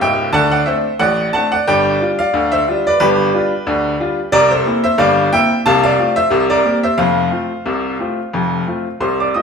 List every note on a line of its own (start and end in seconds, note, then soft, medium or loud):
0.01 0.28 C#1 medium
0.01 0.28 C#2 medium
0.01 0.32 E5 medium
0.01 0.28 G5 loud
0.33 0.61 D2 medium
0.33 0.62 D3 medium
0.33 0.50 F#5 loud
0.33 0.51 A5 loud
0.52 0.66 D5 medium
0.52 0.67 F#5 loud
0.66 0.85 A3 soft
0.66 0.85 C4 soft
0.66 0.85 D4 medium
0.66 0.98 C5 medium
0.66 0.93 E5 medium
0.99 1.28 A1 medium
0.99 1.28 A2 medium
0.99 1.31 D5 medium
0.99 1.26 F#5 loud
1.33 1.52 A3 medium
1.33 1.52 C4 soft
1.33 1.52 D4 medium
1.33 1.50 F#5 medium
1.33 1.51 A5 loud
1.52 1.67 D5 medium
1.52 1.67 F#5 loud
1.67 1.95 G1 medium
1.67 1.96 G2 loud
1.67 2.15 D5 medium
1.67 2.08 G5 loud
2.00 2.19 G3 medium
2.00 2.19 D4 soft
2.00 2.19 F4 medium
2.19 2.50 D5 medium
2.19 2.50 F5 loud
2.34 2.62 D2 medium
2.34 2.62 D3 medium
2.52 2.83 C5 medium
2.52 2.83 E5 loud
2.67 2.85 G3 medium
2.67 2.86 D4 medium
2.67 2.86 F4 medium
2.87 2.98 B4 medium
2.87 3.01 D5 loud
3.00 3.28 G1 medium
3.00 3.28 G2 loud
3.00 4.29 G4 medium
3.00 4.29 B4 loud
3.34 3.52 G3 medium
3.34 3.52 D4 medium
3.34 3.52 F4 medium
3.67 3.95 D2 medium
3.67 3.95 D3 medium
4.00 4.18 G3 medium
4.00 4.18 D4 medium
4.00 4.19 F4 medium
4.32 4.61 C2 medium
4.32 4.61 C3 loud
4.32 4.50 A#4 loud
4.32 4.51 D5 loud
4.51 4.83 A4 medium
4.51 4.82 C5 medium
4.66 4.84 A#3 medium
4.66 4.85 C4 medium
4.66 4.85 E4 medium
4.84 4.98 C5 medium
4.84 4.99 E5 loud
4.98 5.27 G1 loud
4.98 5.27 G2 medium
4.98 5.30 D5 loud
4.98 5.25 F5 loud
5.33 5.51 A#3 medium
5.33 5.51 C4 medium
5.33 5.52 E4 medium
5.33 5.64 E5 medium
5.33 5.59 G5 loud
5.66 5.94 C2 loud
5.66 5.94 C3 loud
5.66 5.82 F5 loud
5.66 5.84 A5 loud
5.84 6.15 D5 medium
5.84 6.10 F5 loud
5.99 6.17 A3 medium
5.99 6.17 C4 medium
5.99 6.18 F4 medium
6.16 6.48 C5 medium
6.16 6.43 E5 loud
6.30 6.60 C2 medium
6.30 6.60 C3 loud
6.50 6.82 A#4 medium
6.50 6.77 D5 loud
6.65 6.84 A#3 medium
6.65 6.84 C4 medium
6.65 6.84 G4 medium
6.83 6.97 C5 medium
6.83 6.99 E5 loud
6.98 7.27 F1 medium
6.98 7.27 F2 medium
6.98 8.96 C5 medium
6.98 8.96 F5 loud
7.31 7.50 A3 soft
7.31 7.50 C4 soft
7.31 7.51 F4 medium
7.66 7.94 C2 medium
7.66 7.94 C3 medium
7.99 8.18 A3 soft
7.99 8.18 C4 soft
7.99 8.19 F4 soft
8.33 8.62 F1 medium
8.33 8.62 F2 medium
8.67 8.85 A3 soft
8.67 8.86 C4 soft
8.67 8.86 F4 medium
9.00 9.29 C2 medium
9.00 9.29 C3 medium
9.00 9.18 C5 medium
9.00 9.19 C6 medium
9.20 9.34 D5 medium
9.20 9.35 D6 medium
9.34 9.42 A3 soft
9.34 9.42 C4 soft
9.34 9.42 F4 medium
9.34 9.42 D#5 medium
9.34 9.42 D#6 medium